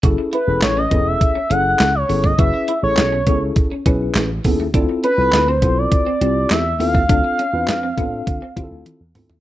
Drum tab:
HH |x-x-x-x-x-x-x-o-|x-x-x-x-x-x-x-o-|x-x-x-x-x-x-x-o-|x-x-x-x-x-x-x-o-|
CP |----x-------x---|----x-------x---|----x-------x---|----x-----------|
SD |----o-------o---|----o-------o---|----o-------o---|----o-----------|
T1 |----------------|----------------|----------------|------------o---|
T2 |----------------|----------------|----------------|--------------o-|
FT |----------------|----------------|----------------|---------------o|
BD |o-----o-o------o|o-----o-o-o---o-|o-----o-o------o|o-----o-o-o-----|